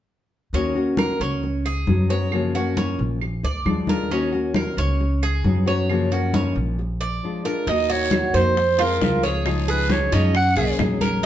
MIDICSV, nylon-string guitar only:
0, 0, Header, 1, 3, 480
1, 0, Start_track
1, 0, Key_signature, -6, "minor"
1, 0, Tempo, 445765
1, 579, Time_signature, 4, 2, 24, 8
1, 12124, End_track
2, 0, Start_track
2, 0, Title_t, "Nylon-string guitar"
2, 0, Program_c, 0, 24
2, 575, Note_on_c, 0, 51, 66
2, 581, Note_on_c, 0, 58, 66
2, 589, Note_on_c, 0, 61, 68
2, 591, Note_on_c, 0, 66, 69
2, 797, Note_off_c, 0, 66, 0
2, 808, Note_off_c, 0, 51, 0
2, 810, Note_on_c, 0, 66, 64
2, 811, Note_off_c, 0, 58, 0
2, 811, Note_off_c, 0, 61, 0
2, 824, Note_on_c, 0, 61, 57
2, 831, Note_on_c, 0, 58, 52
2, 1526, Note_off_c, 0, 66, 0
2, 1533, Note_off_c, 0, 61, 0
2, 1536, Note_off_c, 0, 58, 0
2, 2012, Note_on_c, 0, 54, 49
2, 2022, Note_on_c, 0, 59, 45
2, 2027, Note_on_c, 0, 61, 49
2, 2035, Note_on_c, 0, 66, 50
2, 2243, Note_off_c, 0, 66, 0
2, 2247, Note_off_c, 0, 54, 0
2, 2252, Note_off_c, 0, 59, 0
2, 2252, Note_off_c, 0, 61, 0
2, 2256, Note_on_c, 0, 66, 66
2, 2265, Note_on_c, 0, 61, 55
2, 2270, Note_on_c, 0, 59, 55
2, 2277, Note_on_c, 0, 54, 50
2, 2489, Note_off_c, 0, 66, 0
2, 2493, Note_on_c, 0, 49, 61
2, 2494, Note_off_c, 0, 54, 0
2, 2494, Note_off_c, 0, 61, 0
2, 2497, Note_off_c, 0, 59, 0
2, 2498, Note_on_c, 0, 53, 69
2, 2504, Note_on_c, 0, 58, 65
2, 2508, Note_on_c, 0, 61, 76
2, 2514, Note_on_c, 0, 66, 70
2, 2728, Note_off_c, 0, 49, 0
2, 2729, Note_off_c, 0, 61, 0
2, 2731, Note_off_c, 0, 53, 0
2, 2734, Note_off_c, 0, 58, 0
2, 2739, Note_off_c, 0, 66, 0
2, 2741, Note_on_c, 0, 61, 66
2, 2747, Note_on_c, 0, 58, 61
2, 2752, Note_on_c, 0, 53, 51
2, 3451, Note_off_c, 0, 53, 0
2, 3453, Note_off_c, 0, 61, 0
2, 3456, Note_off_c, 0, 58, 0
2, 3940, Note_on_c, 0, 53, 46
2, 3947, Note_on_c, 0, 56, 49
2, 3953, Note_on_c, 0, 62, 51
2, 3959, Note_on_c, 0, 65, 47
2, 4168, Note_off_c, 0, 65, 0
2, 4172, Note_off_c, 0, 53, 0
2, 4175, Note_off_c, 0, 56, 0
2, 4178, Note_off_c, 0, 62, 0
2, 4181, Note_on_c, 0, 65, 64
2, 4191, Note_on_c, 0, 62, 53
2, 4201, Note_on_c, 0, 56, 51
2, 4413, Note_off_c, 0, 65, 0
2, 4418, Note_off_c, 0, 62, 0
2, 4418, Note_on_c, 0, 51, 61
2, 4420, Note_off_c, 0, 56, 0
2, 4424, Note_on_c, 0, 58, 66
2, 4432, Note_on_c, 0, 61, 74
2, 4439, Note_on_c, 0, 66, 73
2, 4642, Note_off_c, 0, 66, 0
2, 4651, Note_off_c, 0, 51, 0
2, 4654, Note_off_c, 0, 58, 0
2, 4655, Note_on_c, 0, 66, 70
2, 4656, Note_off_c, 0, 61, 0
2, 4668, Note_on_c, 0, 61, 58
2, 4679, Note_on_c, 0, 58, 50
2, 5370, Note_off_c, 0, 66, 0
2, 5377, Note_off_c, 0, 61, 0
2, 5382, Note_off_c, 0, 58, 0
2, 5857, Note_on_c, 0, 54, 45
2, 5863, Note_on_c, 0, 59, 52
2, 5872, Note_on_c, 0, 61, 52
2, 5878, Note_on_c, 0, 66, 51
2, 6083, Note_off_c, 0, 66, 0
2, 6091, Note_off_c, 0, 54, 0
2, 6093, Note_off_c, 0, 61, 0
2, 6094, Note_off_c, 0, 59, 0
2, 6096, Note_on_c, 0, 66, 64
2, 6105, Note_on_c, 0, 61, 60
2, 6113, Note_on_c, 0, 59, 57
2, 6118, Note_on_c, 0, 54, 51
2, 6331, Note_off_c, 0, 66, 0
2, 6335, Note_off_c, 0, 61, 0
2, 6339, Note_off_c, 0, 59, 0
2, 6341, Note_off_c, 0, 54, 0
2, 6343, Note_on_c, 0, 49, 65
2, 6349, Note_on_c, 0, 53, 69
2, 6355, Note_on_c, 0, 58, 72
2, 6360, Note_on_c, 0, 61, 75
2, 6363, Note_on_c, 0, 66, 68
2, 6574, Note_off_c, 0, 49, 0
2, 6574, Note_off_c, 0, 61, 0
2, 6577, Note_off_c, 0, 53, 0
2, 6580, Note_off_c, 0, 58, 0
2, 6584, Note_off_c, 0, 66, 0
2, 6587, Note_on_c, 0, 61, 60
2, 6594, Note_on_c, 0, 58, 60
2, 6600, Note_on_c, 0, 53, 53
2, 7293, Note_off_c, 0, 53, 0
2, 7296, Note_off_c, 0, 61, 0
2, 7300, Note_off_c, 0, 58, 0
2, 7785, Note_on_c, 0, 53, 48
2, 7796, Note_on_c, 0, 56, 49
2, 7800, Note_on_c, 0, 62, 51
2, 7807, Note_on_c, 0, 65, 51
2, 8007, Note_off_c, 0, 65, 0
2, 8015, Note_off_c, 0, 53, 0
2, 8019, Note_off_c, 0, 62, 0
2, 8020, Note_off_c, 0, 56, 0
2, 8020, Note_on_c, 0, 65, 60
2, 8032, Note_on_c, 0, 62, 53
2, 8042, Note_on_c, 0, 56, 52
2, 8252, Note_off_c, 0, 65, 0
2, 8258, Note_off_c, 0, 62, 0
2, 8259, Note_on_c, 0, 51, 75
2, 8261, Note_off_c, 0, 56, 0
2, 8265, Note_on_c, 0, 58, 79
2, 8273, Note_on_c, 0, 63, 71
2, 8279, Note_on_c, 0, 66, 73
2, 8969, Note_off_c, 0, 66, 0
2, 8971, Note_off_c, 0, 51, 0
2, 8974, Note_off_c, 0, 58, 0
2, 8978, Note_off_c, 0, 63, 0
2, 8982, Note_on_c, 0, 66, 70
2, 8996, Note_on_c, 0, 63, 55
2, 9003, Note_on_c, 0, 58, 57
2, 9212, Note_off_c, 0, 66, 0
2, 9219, Note_off_c, 0, 63, 0
2, 9223, Note_off_c, 0, 58, 0
2, 9456, Note_on_c, 0, 65, 73
2, 9464, Note_on_c, 0, 60, 67
2, 9470, Note_on_c, 0, 56, 60
2, 9473, Note_on_c, 0, 53, 55
2, 9681, Note_off_c, 0, 53, 0
2, 9687, Note_off_c, 0, 56, 0
2, 9689, Note_off_c, 0, 65, 0
2, 9693, Note_off_c, 0, 60, 0
2, 9694, Note_on_c, 0, 53, 48
2, 9700, Note_on_c, 0, 56, 50
2, 9709, Note_on_c, 0, 60, 53
2, 9715, Note_on_c, 0, 65, 53
2, 10167, Note_off_c, 0, 53, 0
2, 10170, Note_off_c, 0, 56, 0
2, 10175, Note_off_c, 0, 60, 0
2, 10178, Note_off_c, 0, 65, 0
2, 10179, Note_on_c, 0, 49, 67
2, 10187, Note_on_c, 0, 53, 68
2, 10191, Note_on_c, 0, 56, 74
2, 10194, Note_on_c, 0, 63, 80
2, 10203, Note_on_c, 0, 65, 73
2, 10883, Note_off_c, 0, 65, 0
2, 10889, Note_off_c, 0, 49, 0
2, 10892, Note_off_c, 0, 63, 0
2, 10893, Note_off_c, 0, 53, 0
2, 10895, Note_off_c, 0, 56, 0
2, 10896, Note_on_c, 0, 65, 61
2, 10905, Note_on_c, 0, 63, 65
2, 10912, Note_on_c, 0, 56, 60
2, 10919, Note_on_c, 0, 53, 56
2, 11127, Note_off_c, 0, 65, 0
2, 11132, Note_off_c, 0, 63, 0
2, 11136, Note_off_c, 0, 56, 0
2, 11139, Note_off_c, 0, 53, 0
2, 11380, Note_on_c, 0, 68, 75
2, 11392, Note_on_c, 0, 61, 67
2, 11401, Note_on_c, 0, 58, 58
2, 11609, Note_off_c, 0, 68, 0
2, 11615, Note_off_c, 0, 58, 0
2, 11615, Note_off_c, 0, 61, 0
2, 11617, Note_on_c, 0, 54, 49
2, 11628, Note_on_c, 0, 58, 49
2, 11633, Note_on_c, 0, 61, 50
2, 11639, Note_on_c, 0, 68, 56
2, 12087, Note_off_c, 0, 54, 0
2, 12092, Note_off_c, 0, 58, 0
2, 12095, Note_off_c, 0, 61, 0
2, 12098, Note_off_c, 0, 68, 0
2, 12124, End_track
3, 0, Start_track
3, 0, Title_t, "Muted nylon-string guitar strokes"
3, 1537, Note_on_c, 9, 29, 59
3, 1644, Note_off_c, 9, 29, 0
3, 3464, Note_on_c, 9, 29, 53
3, 3572, Note_off_c, 9, 29, 0
3, 5383, Note_on_c, 9, 29, 59
3, 5490, Note_off_c, 9, 29, 0
3, 7306, Note_on_c, 9, 29, 57
3, 7414, Note_off_c, 9, 29, 0
3, 9225, Note_on_c, 9, 29, 62
3, 9333, Note_off_c, 9, 29, 0
3, 11143, Note_on_c, 9, 29, 64
3, 11251, Note_off_c, 9, 29, 0
3, 12124, End_track
0, 0, End_of_file